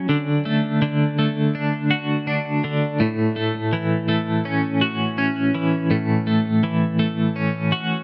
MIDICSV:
0, 0, Header, 1, 2, 480
1, 0, Start_track
1, 0, Key_signature, 3, "major"
1, 0, Tempo, 726392
1, 63, Time_signature, 4, 2, 24, 8
1, 5310, End_track
2, 0, Start_track
2, 0, Title_t, "Clean electric guitar"
2, 0, Program_c, 0, 27
2, 0, Note_on_c, 0, 66, 65
2, 59, Note_on_c, 0, 50, 61
2, 300, Note_on_c, 0, 57, 60
2, 533, Note_off_c, 0, 50, 0
2, 541, Note_on_c, 0, 50, 64
2, 781, Note_off_c, 0, 57, 0
2, 784, Note_on_c, 0, 57, 61
2, 1023, Note_on_c, 0, 62, 62
2, 1257, Note_off_c, 0, 66, 0
2, 1259, Note_on_c, 0, 66, 64
2, 1494, Note_off_c, 0, 62, 0
2, 1502, Note_on_c, 0, 62, 62
2, 1737, Note_off_c, 0, 50, 0
2, 1745, Note_on_c, 0, 50, 61
2, 1983, Note_off_c, 0, 62, 0
2, 1983, Note_on_c, 0, 45, 66
2, 1985, Note_off_c, 0, 50, 0
2, 2218, Note_off_c, 0, 57, 0
2, 2221, Note_on_c, 0, 57, 60
2, 2464, Note_on_c, 0, 52, 58
2, 2483, Note_off_c, 0, 66, 0
2, 2697, Note_off_c, 0, 57, 0
2, 2699, Note_on_c, 0, 57, 63
2, 2942, Note_on_c, 0, 61, 60
2, 3181, Note_on_c, 0, 66, 60
2, 3421, Note_off_c, 0, 61, 0
2, 3423, Note_on_c, 0, 61, 65
2, 3657, Note_off_c, 0, 52, 0
2, 3665, Note_on_c, 0, 52, 57
2, 3901, Note_off_c, 0, 45, 0
2, 3903, Note_on_c, 0, 45, 69
2, 4140, Note_off_c, 0, 57, 0
2, 4143, Note_on_c, 0, 57, 54
2, 4376, Note_off_c, 0, 52, 0
2, 4384, Note_on_c, 0, 52, 72
2, 4403, Note_off_c, 0, 66, 0
2, 4618, Note_off_c, 0, 57, 0
2, 4621, Note_on_c, 0, 57, 68
2, 4860, Note_off_c, 0, 61, 0
2, 4862, Note_on_c, 0, 61, 61
2, 5102, Note_on_c, 0, 66, 69
2, 5104, Note_off_c, 0, 45, 0
2, 5310, Note_off_c, 0, 52, 0
2, 5310, Note_off_c, 0, 57, 0
2, 5310, Note_off_c, 0, 61, 0
2, 5310, Note_off_c, 0, 66, 0
2, 5310, End_track
0, 0, End_of_file